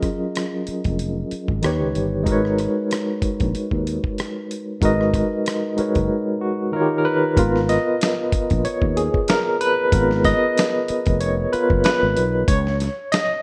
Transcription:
Already playing: F#3 C#4 F4 G#4 A#4 D#5
0.03 kick, cross-stick, closed hi-hat
0.35 cross-stick, closed hi-hat
0.67 muted fretless electric bass stroke, closed hi-hat
0.84 F1, kick, closed hi-hat
0.99 closed hi-hat
1.31 muted fretless electric bass stroke, closed hi-hat
1.48 G#1, kick
1.62 D#2 D#3 D#4 G4 B4, cross-stick, closed hi-hat
1.66 C#5
1.81 C#2
1.95 G1, closed hi-hat
2.23 G#1 G#3 D#4 F#4, kick, closed hi-hat
2.28 A#4 B4 C#5
2.45 cross-stick
2.58 cross-stick, closed hi-hat
2.91 cross-stick, closed hi-hat
3.22 muted fretless electric bass stroke, kick, closed hi-hat
3.40 A#1, kick, closed hi-hat
3.55 muted fretless electric bass stroke, closed hi-hat
3.71 D#2, kick
3.87 closed hi-hat
4.04 kick
4.18 cross-stick, closed hi-hat
4.51 closed hi-hat
4.81 G#1 G#3 D#4 F#4 A#4 B4, kick, closed hi-hat
4.85 D#5
5.01 cross-stick
5.14 kick, cross-stick, closed hi-hat
5.46 cross-stick, closed hi-hat
5.76 G#3 D#4 F#4 A#4 B4, muted fretless electric bass stroke, closed hi-hat
5.80 C#5
5.95 F#1, kick, closed hi-hat
6.41 F#4
6.72 D#3 D#4 F4 F#4 A#4
6.76 C#5
6.82 G4
6.98 A#4
7.05 B4
7.37 G#1 B3 F4 A#4, kick, closed hi-hat
7.56 snare
7.69 D#5, snare, closed hi-hat
8.01 snare, closed hi-hat
8.32 muted fretless electric bass stroke, kick, closed hi-hat
8.50 A#1, kick, closed hi-hat
8.65 C#5, closed hi-hat
8.82 D#2, kick
8.97 G#4, closed hi-hat
9.14 kick
9.28 A#4, snare, closed hi-hat
9.61 B4, closed hi-hat
9.92 G#1 B3 F4 A#4, kick, closed hi-hat
10.11 snare
10.24 D#5, kick, snare, closed hi-hat
10.58 snare, closed hi-hat
10.88 muted fretless electric bass stroke, closed hi-hat
11.06 F1, kick, closed hi-hat
11.20 C#5, closed hi-hat
11.53 B3 F4 A#4 B4, muted fretless electric bass stroke, closed hi-hat
11.70 F#1, kick
11.84 B4, snare, closed hi-hat
12.03 G#1
12.17 B1, closed hi-hat
12.48 C#2 C#5, kick, closed hi-hat
12.67 snare
12.80 snare, closed hi-hat
13.12 D#5, snare, closed hi-hat

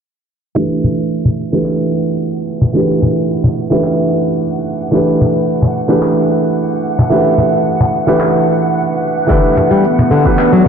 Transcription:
0.55 E3 A3 D4 G4 F#5
0.59 B4
0.84 cajon bass, cajon slap
1.25 cajon bass
1.52 E3 A3 D4 G4 B4
1.66 clap
2.62 cajon bass
2.73 E3 A3 D4 G4 B4
3.02 cajon bass, cajon slap
3.44 cajon bass, cajon slap
3.70 E3 A3 D4 G4 B4, cajon slap
3.84 clap
4.91 E3 A3 D4 G4 B4
5.21 cajon bass, cajon slap
5.62 cajon bass
5.88 E3 A3 D4 G4 B4
6.03 clap
6.99 cajon bass
7.10 E3 A3 D4 G4 B4
7.38 cajon bass, cajon slap
7.81 cajon bass, cajon slap
8.07 E3 A3 D4 G4 B4, cajon slap
8.20 clap
9.27 D3 E3 A3 B3 D4 G4, kick, shaker
9.31 B4
9.44 shaker
9.49 E4
9.57 cajon bass, cajon slap, shaker
9.71 G3 E5, shaker
9.84 shaker
9.91 D5
9.99 cajon bass
10.11 D3, shaker
10.25 E3 A3 D4 G4 B4, kick, shaker
10.39 clap, shaker
10.53 F#3

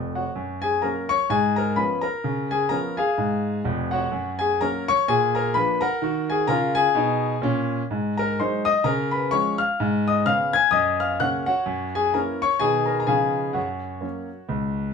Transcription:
Already playing: F1 F2
0.15 F#4 C#5 F#5
0.35 F#2
0.62 G#4 G#5
0.82 F#3 A#3 C#4 A#4 A#5
1.09 C#5 C#6
1.30 G#2 G#4 G#5
1.56 A#4 A#5
1.76 F3 B3 C#4 B4 B5
2.01 A#4 A#5
2.24 C#3
2.51 G#4 G#5
2.69 F3 B3 C#4 A#4 A#5
2.97 G#4 F5 G#5
3.18 G#2
3.65 F1 F2
3.91 F#4 C#5 F#5
4.11 F#2
4.39 G#4 G#5
4.61 F#3 A#3 C#4 A#4 A#5
4.88 C#5 C#6
5.08 A#2 G#4 G#5
5.35 A#4 A#5
5.54 F3 A#3 D4 B4 B5
5.81 A#4 F#5 A#5
6.02 D#3 F#4
6.30 G#4 G#5
6.47 C#3 F4 A#4 A#5
6.75 G#4 G#5
6.95 B2 D#4
7.42 A#2 C#4
7.91 G#2
8.17 A#4 A#5
8.39 F#3 G#3 D#4 C5 C6
8.65 D#5 D#6
8.84 C#3 A#4 A#5
9.11 B4 B5
9.31 F3 G#3 C#4 C#5 C#6
9.58 F5 F6
9.80 G#2
10.08 D#5 D#6
10.26 C#3 B3 C#4 F5 F6
10.53 G#5 G#6
10.71 F#2 D#5 D#6
11.00 F5 F6
11.20 C#3 A#3 C#4 F#5 F#6
11.46 F#4 C#5 F#5
11.66 F#2
11.95 G#4 G#5
12.14 E3 A#3 C#4 A#4 A#5
12.42 C#5 C#6
12.60 B2 D#3 B3 D#4 G#4 G#5
12.86 A#4 A#5
13.00 A#5
13.06 C#3 F3 B3 D#4 G#4 F5 G#5
13.53 F#2 F#4 C#5 F#5
14.01 F#3 A#3 C#4
14.49 C#2

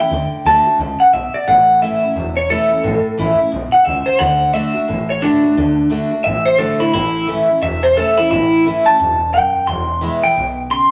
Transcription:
0.00 C#4 E4 G5
0.11 D2 D3
0.32 muted upright bass stroke
0.45 D2 D3 A3 D4 F#4 A5
0.66 D4 F#4, muted upright bass stroke
0.79 C#2 C#3
1.00 F#5, muted upright bass stroke
1.13 B1 B2 E5
1.34 D5, muted upright bass stroke
1.48 A1 A2 F#5
1.82 E3 A3 C#4 E4 E5
2.02 C#4 E4, muted upright bass stroke
2.15 E1 E2
2.37 C#5
2.50 E3 A3 C#4 E4 A4
2.70 C#4 E4, muted upright bass stroke
2.83 A1 A2
3.05 muted upright bass stroke
3.18 A1 E3 A3 C#4 E4
3.38 C#4 E4, muted upright bass stroke
3.52 B1 B2
3.72 F#5, muted upright bass stroke
3.85 C#2 C#3 E5
4.06 C5, muted upright bass stroke
4.19 D2 D3 F#5
4.53 D3 A3 D4 F#4 E5
4.74 D4 F#4, muted upright bass stroke
4.88 A1 A2
5.10 C#5
5.22 D3 A3 D4 F#4
5.43 D4 F#4, muted upright bass stroke
5.57 D2 D3
5.90 D3 A3 D4 F#4
6.11 D4 F#4, muted upright bass stroke
6.24 A1 A2 E5
6.45 C5
6.58 D3 A3 D4 F#4 A4
6.80 E4, muted upright bass stroke
6.94 A1 A2 E4
7.27 E3 A3 C#4 E4
7.49 C#4 E4, muted upright bass stroke
7.62 E1 E2 E5
7.83 C5
7.96 E3 A3 C#4 E4 A4
8.17 C#4 E4, muted upright bass stroke
8.30 A1 A2 E4
8.65 E3 A3 C#4 E4
8.85 C#4 E4 A5, muted upright bass stroke
8.99 E1 G2
9.33 F#2 G5
9.56 muted upright bass stroke
9.67 E1 E2 C6
10.01 E3 G#3 B3 E4
10.23 B3 E4 G5, muted upright bass stroke
10.36 B1 B2
10.70 C#3 C6

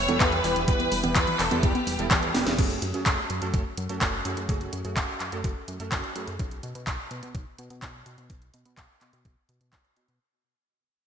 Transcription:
Already playing: B4 C#5 E5 G5 E6
0.08 E1 E3 G3 B3 E4 A4, closed hi-hat, high conga
0.20 E2 B3 B4, kick, clap, closed hi-hat
0.32 E3, closed hi-hat
0.44 E1 E3 G3 B3 E4 G4, open hi-hat
0.56 E1 E3, closed hi-hat
0.68 E2 E3 G3 B3 E4 G4 B4 F#6, kick, closed hi-hat
0.80 B3, closed hi-hat
0.92 E1 G3, open hi-hat
1.04 E1 E3 G3 B3 E4 G4, closed hi-hat, high conga
1.16 E2 B3 B4, kick, clap, closed hi-hat
1.27 E3, closed hi-hat
1.39 E1 E3 A4, clap, open hi-hat
1.51 E1 E3 G3 B3 E4 A4, closed hi-hat, high conga
1.63 E2 E3 G4, kick, closed hi-hat
1.75 B3, closed hi-hat, high conga
1.87 E1 G3, open hi-hat
1.99 E1 E3 G3 B3 E4 A4, closed hi-hat
2.11 E2 B3, kick, clap, closed hi-hat
2.23 E3, closed hi-hat
2.35 E1 E3 G3 B3 E4 G4, snare, open hi-hat, high conga
2.47 E1 E3, snare, closed hi-hat
2.58 F#1 A3 C#4 F#4 G#4, kick, closed hi-hat, crash
2.70 closed hi-hat
2.82 F#2, closed hi-hat
2.94 F#2 A3 C#4 F#4 G#4, closed hi-hat
3.06 F#1, kick, clap, closed hi-hat
3.30 F#2, closed hi-hat
3.42 F#2 A3 C#4 F#4 A4, closed hi-hat
3.54 F#1, kick, closed hi-hat
3.77 F#2, closed hi-hat
3.89 F#2 A3 C#4 F#4 A4, closed hi-hat
4.01 F#1, kick, clap, closed hi-hat
4.25 F#2 A3 C#4 F#4 G#4, closed hi-hat
4.37 F#2, closed hi-hat
4.49 F#1 A3 C#4 F#4 G#4, kick, closed hi-hat
4.61 closed hi-hat
4.73 F#2, closed hi-hat
4.85 F#2 A3 C#4 F#4 G#4, closed hi-hat
4.97 F#1, kick, clap, closed hi-hat
5.20 F#2, clap, closed hi-hat
5.32 F#2 A3 C#4 F#4 A4, closed hi-hat
5.44 F#1, kick, closed hi-hat
5.68 F#2, closed hi-hat
5.80 F#2 A3 C#4 F#4 A4, closed hi-hat
5.92 F#1, kick, clap, closed hi-hat
6.04 closed hi-hat
6.16 F#2 A3 C#4 F#4 G#4, closed hi-hat
6.27 F#2, closed hi-hat
6.39 B1, kick, closed hi-hat
6.51 closed hi-hat
6.63 B2, closed hi-hat
6.75 B2, closed hi-hat
6.87 B1, kick, clap, closed hi-hat
7.11 B2, closed hi-hat
7.23 B2, closed hi-hat
7.35 B1, kick, closed hi-hat
7.58 B2, closed hi-hat
7.70 B2, closed hi-hat
7.82 B1, kick, clap, closed hi-hat
8.06 B2, closed hi-hat
8.18 B2, closed hi-hat
8.30 B1, kick, closed hi-hat
8.42 closed hi-hat
8.54 B2, closed hi-hat
8.65 B2, closed hi-hat
8.77 B1, kick, clap, closed hi-hat
9.01 B2, clap, closed hi-hat
9.13 B2, closed hi-hat
9.25 B1, kick, closed hi-hat
9.49 B2, closed hi-hat
9.61 B2, closed hi-hat
9.73 B1, kick, clap, closed hi-hat
9.85 closed hi-hat
9.96 B2, closed hi-hat
10.08 B2, closed hi-hat

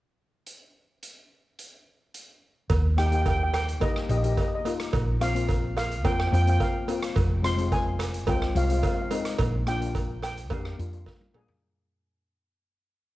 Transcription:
0.46 closed hi-hat
1.03 closed hi-hat
1.59 closed hi-hat
2.14 closed hi-hat
2.70 D#2, kick, closed hi-hat, cowbell
2.97 A#3 D#4 G4 G5, cross-stick, closed hi-hat
3.06 G5
3.11 A#3 D#4 G4 G5, closed hi-hat
3.22 G5
3.26 G5, kick, closed hi-hat, cowbell
3.37 G5
3.43 G5
3.54 G5, cross-stick, closed hi-hat, cowbell
3.69 closed hi-hat
3.80 A#1 A#3 D#4 G4 D#5, kick, closed hi-hat, cowbell
3.96 cross-stick
4.09 A#1 A#3 D#4 G4 D#5, closed hi-hat
4.18 D#5
4.23 A#3 D#4 G4 D#5, closed hi-hat
4.32 D#5
4.37 D#5, kick, closed hi-hat, cowbell
4.48 D#5
4.55 D#5
4.65 A#3 D#4 F4, closed hi-hat, cowbell
4.80 cross-stick, closed hi-hat
4.93 A#1, kick, closed hi-hat, cowbell
5.20 A#3 C4 F4 F5, cross-stick, closed hi-hat
5.34 A#3 C4 F4, closed hi-hat
5.49 kick, closed hi-hat, cowbell
5.77 F5, cross-stick, closed hi-hat, cowbell
5.92 closed hi-hat
6.04 F2 A#3 C4 F4 G5, kick, closed hi-hat, cowbell
6.12 G5
6.19 G5, cross-stick
6.27 A#3 G5
6.32 F2 C4 F4 G5, closed hi-hat
6.42 G5
6.46 A#3 C4 F4 G5, closed hi-hat
6.60 F5, kick, closed hi-hat, cowbell
6.88 A#3 C4 F4, closed hi-hat, cowbell
7.03 cross-stick, closed hi-hat
7.16 F1, kick, closed hi-hat, cowbell
7.43 G#3 C4 F4 C6, cross-stick, closed hi-hat
7.57 G#3 C4 F4, closed hi-hat
7.72 G#5, kick, closed hi-hat, cowbell
7.99 cross-stick, closed hi-hat, cowbell
8.14 closed hi-hat
8.27 C2 G#3 C4 F4 G5, kick, closed hi-hat, cowbell
8.42 cross-stick
8.55 C2 G#3 C4 F4 F5, closed hi-hat
8.64 G#3 F5
8.69 C4 F4 F5, closed hi-hat
8.79 F5, cowbell
8.83 F5, kick, closed hi-hat
8.95 F5
9.02 F5
9.10 G#3 C4 D#4, closed hi-hat, cowbell
9.25 cross-stick, closed hi-hat
9.38 A#1, kick, closed hi-hat, cowbell
9.67 A#3 D4 F4 G5, cross-stick, closed hi-hat
9.80 A#3 D4 F4, closed hi-hat
9.95 kick, closed hi-hat, cowbell
10.22 G5, cross-stick, closed hi-hat, cowbell
10.37 closed hi-hat
10.50 F2 A#3 D4 G4 F5, kick, closed hi-hat, cowbell
10.65 cross-stick
10.78 F2 A#3 D4 F4, closed hi-hat
10.92 A#3 D4 F4, closed hi-hat
11.06 kick, snare, cowbell
11.21 high tom
11.33 A#3 D4 G#4, mid tom, cowbell
11.48 floor tom

